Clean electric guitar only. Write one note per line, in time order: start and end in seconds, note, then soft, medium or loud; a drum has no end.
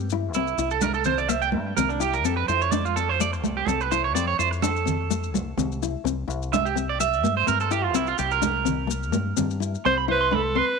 0.35 0.69 E4 medium
0.71 0.82 A4 medium
0.82 0.94 A#4 medium
0.94 1.05 A4 medium
1.06 1.18 C5 loud
1.18 1.29 D5 medium
1.29 1.41 E5 medium
1.42 1.49 G5 loud
1.77 1.89 A#4 medium
1.89 2.00 D4 medium
2.01 2.13 G4 medium
2.14 2.25 A#4 medium
2.25 2.36 A4 medium
2.37 2.48 B4 medium
2.48 2.60 C5 medium
2.62 2.72 C#5 medium
2.72 2.84 D5 medium
2.85 2.96 F4 medium
2.96 3.09 A4 medium
3.09 3.20 C5 medium
3.21 3.32 D5 medium
3.33 muted clean electric guitar stroke medium
3.57 3.68 G4 medium
3.68 3.81 A4 medium
3.81 3.91 B4 medium
3.91 4.03 C5 medium
4.04 4.14 C#5 medium
4.15 4.27 D5 medium
4.28 4.38 C#5 medium
4.39 4.51 C5 medium
4.51 muted clean electric guitar stroke medium
4.62 5.29 A4 medium
6.53 6.65 E5 medium
6.65 6.76 G4 medium
6.89 7.00 D5 medium
7.00 7.34 E5 loud
7.37 7.47 C5 medium
7.48 7.60 A#4 medium
7.61 7.71 A4 medium
7.72 7.84 G4 loud
7.84 7.95 F4 medium
7.95 8.07 E4 medium
8.08 8.18 F4 medium
8.19 8.31 G4 medium
8.32 9.46 A#4 medium
9.85 9.93 C6 loud
9.98 10.05 B5 medium
10.09 10.17 C5 medium
10.21 10.28 C6 medium
10.33 10.41 B5 medium
10.56 10.64 C6 medium